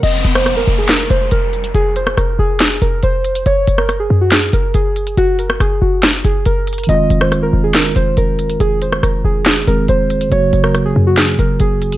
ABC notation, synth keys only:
X:1
M:4/4
L:1/16
Q:1/4=140
K:Fphr
V:1 name="Synth keys"
e3 c2 B2 A B2 c2 B4 | A2 c2 B2 A4 B2 c4 | d3 B2 A2 G A2 B2 A4 | G2 B2 A2 G2 z2 A2 B4 |
e3 c2 B2 A B2 c2 B4 | A2 c2 B2 A4 B2 c4 | d3 B2 A2 G A2 B2 A4 |]